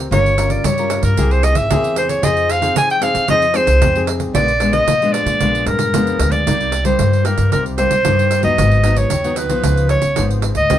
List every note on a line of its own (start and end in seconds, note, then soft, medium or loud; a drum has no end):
0.11 0.56 G1 medium
0.11 0.62 G3 medium
0.11 0.34 C#4 medium
0.11 0.34 F4 medium
0.11 0.34 A#4 medium
0.11 0.53 C#5 medium
0.11 pandeiro medium
0.26 pandeiro soft
0.37 0.62 C#4 medium
0.37 0.63 F4 medium
0.37 0.63 A#4 medium
0.37 pandeiro medium
0.50 0.67 D5 medium
0.50 pandeiro medium
0.64 0.98 G2 medium
0.64 1.15 G3 medium
0.64 1.03 C#5 medium
0.64 pandeiro medium
0.78 1.14 C#4 medium
0.78 1.14 F4 medium
0.78 1.14 A#4 medium
0.78 pandeiro soft
0.90 pandeiro medium
1.03 1.15 G2 medium
1.03 1.33 A#4 medium
1.03 pandeiro medium
1.17 1.51 C2 medium
1.17 1.68 C3 medium
1.17 1.66 A#3 medium
1.17 1.66 E4 medium
1.17 1.67 G#4 medium
1.17 pandeiro medium
1.31 1.45 C5 medium
1.31 pandeiro soft
1.43 1.58 D#5 medium
1.43 pandeiro medium
1.55 1.72 G#1 medium
1.55 1.97 E5 medium
1.55 pandeiro medium
1.70 2.15 E2 medium
1.70 2.21 C3 medium
1.70 2.19 A#3 medium
1.70 2.19 E4 medium
1.70 2.20 G#4 medium
1.70 pandeiro medium
1.84 pandeiro soft
1.96 2.11 C5 medium
1.96 pandeiro medium
2.09 2.26 C#5 medium
2.09 pandeiro medium
2.22 2.68 F2 medium
2.22 2.73 F3 medium
2.22 2.58 C4 medium
2.22 2.58 D#4 medium
2.22 2.59 G#4 medium
2.22 2.53 D#5 loud
2.22 pandeiro medium
2.37 pandeiro soft
2.49 2.77 F5 medium
2.49 pandeiro medium
2.61 2.98 C4 medium
2.61 2.98 D#4 medium
2.61 2.98 G#4 medium
2.61 pandeiro medium
2.75 3.26 C3 medium
2.75 3.10 F3 medium
2.75 2.89 G#5 loud
2.75 pandeiro medium
2.90 3.04 G5 loud
2.90 pandeiro soft
3.01 3.24 C4 medium
3.01 3.24 D#4 medium
3.01 3.25 G#4 medium
3.01 3.29 F5 medium
3.01 pandeiro medium
3.15 3.26 F3 medium
3.15 pandeiro medium
3.28 3.63 F2 medium
3.28 3.79 F3 medium
3.28 3.44 C4 medium
3.28 3.45 D#4 medium
3.28 3.45 G#4 medium
3.28 3.58 D#5 medium
3.28 pandeiro medium
3.42 pandeiro soft
3.54 3.90 C4 medium
3.54 3.91 D#4 medium
3.54 3.91 G#4 medium
3.54 4.09 C5 medium
3.54 pandeiro medium
3.67 3.83 C2 medium
3.67 pandeiro medium
3.81 4.27 F2 medium
3.81 4.32 C3 medium
3.81 pandeiro medium
3.95 4.31 C4 medium
3.95 4.31 D#4 medium
3.95 4.31 G#4 medium
3.95 pandeiro soft
4.07 pandeiro medium
4.20 pandeiro soft
4.34 4.79 A#1 medium
4.34 4.85 A#2 medium
4.34 4.51 G#3 medium
4.34 4.51 B3 medium
4.34 4.51 D4 medium
4.34 4.74 D5 loud
4.34 pandeiro medium
4.48 pandeiro soft
4.60 4.86 G#3 medium
4.60 4.86 B3 medium
4.60 4.87 D4 medium
4.60 pandeiro medium
4.73 5.14 D#5 loud
4.73 pandeiro medium
4.87 5.21 A#2 medium
4.87 5.38 F3 medium
4.87 pandeiro medium
5.02 5.37 G#3 medium
5.02 5.37 B3 medium
5.02 5.38 D4 medium
5.02 pandeiro soft
5.12 5.66 D5 medium
5.12 pandeiro medium
5.25 5.38 A#2 medium
5.25 pandeiro medium
5.40 5.63 A#1 medium
5.40 5.91 A#2 medium
5.40 5.90 G#3 medium
5.40 5.90 B3 soft
5.40 5.90 D4 medium
5.40 pandeiro medium
5.55 pandeiro soft
5.66 5.90 G2 medium
5.66 6.33 A#4 medium
5.66 pandeiro medium
5.79 pandeiro medium
5.93 6.17 F2 medium
5.93 6.44 F3 medium
5.93 6.43 G#3 medium
5.93 6.43 B3 medium
5.93 6.43 D4 medium
5.93 pandeiro medium
6.07 pandeiro soft
6.19 6.43 D2 medium
6.19 pandeiro medium
6.32 6.85 D5 medium
6.32 pandeiro medium
6.46 6.92 C2 medium
6.46 6.97 C3 medium
6.46 6.71 G3 medium
6.46 6.71 A#3 medium
6.46 6.72 D#4 medium
6.46 pandeiro medium
6.60 pandeiro soft
6.72 pandeiro medium
6.85 7.21 G3 medium
6.85 7.21 A#3 medium
6.85 7.21 D#4 medium
6.85 7.27 C5 medium
6.85 pandeiro medium
6.99 7.50 G2 soft
6.99 7.33 G2 medium
6.99 pandeiro medium
7.13 pandeiro soft
7.25 7.74 G3 medium
7.25 7.74 A#3 medium
7.25 7.74 D#4 medium
7.25 7.52 A#4 medium
7.25 pandeiro medium
7.38 7.50 G2 medium
7.38 pandeiro medium
7.52 7.86 C2 medium
7.52 8.02 C3 soft
7.52 7.64 A#4 medium
7.52 pandeiro medium
7.66 pandeiro soft
7.77 7.94 G3 medium
7.77 7.94 A#3 soft
7.77 7.94 D#4 medium
7.77 8.41 C5 loud
7.77 pandeiro medium
7.91 8.06 C2 medium
7.91 pandeiro medium
8.05 8.55 G2 medium
8.05 8.39 G2 medium
8.05 8.41 G3 medium
8.05 8.41 A#3 medium
8.05 8.41 D#4 medium
8.05 pandeiro medium
8.19 pandeiro soft
8.31 pandeiro medium
8.43 8.56 D#2 medium
8.43 8.82 F#3 medium
8.43 8.83 B3 medium
8.43 8.83 D#4 medium
8.43 8.99 D#5 medium
8.43 pandeiro soft
8.58 9.03 G#1 medium
8.58 9.08 G#2 medium
8.58 pandeiro medium
8.71 pandeiro soft
8.84 9.09 F#3 medium
8.84 9.09 B3 medium
8.84 9.09 D#4 medium
8.84 pandeiro medium
8.96 9.39 C#5 medium
8.96 pandeiro medium
9.10 9.49 D#2 medium
9.10 9.61 D#3 medium
9.10 pandeiro medium
9.24 9.46 F#3 medium
9.24 9.47 B3 medium
9.24 9.47 D#4 medium
9.24 pandeiro soft
9.36 9.89 B4 medium
9.36 pandeiro medium
9.49 9.61 B1 medium
9.49 9.99 F3 medium
9.49 9.99 B3 medium
9.49 9.99 D#4 medium
9.49 pandeiro medium
9.63 9.97 C#2 medium
9.63 10.14 C#3 medium
9.63 pandeiro medium
9.77 pandeiro soft
9.89 10.27 C#5 medium
9.89 pandeiro medium
10.02 10.19 C#2 medium
10.02 pandeiro medium
10.16 10.51 G#1 medium
10.16 10.67 G#2 medium
10.16 10.51 F3 medium
10.16 10.51 B3 medium
10.16 10.51 D#4 medium
10.16 pandeiro medium
10.31 pandeiro soft
10.42 pandeiro medium
10.55 10.67 D2 medium
10.55 10.79 D#5 medium
10.55 pandeiro medium
10.70 10.79 D#2 medium
10.70 10.79 D#3 medium
10.70 10.79 A#3 medium
10.70 10.79 C4 medium
10.70 10.79 G4 medium
10.70 pandeiro medium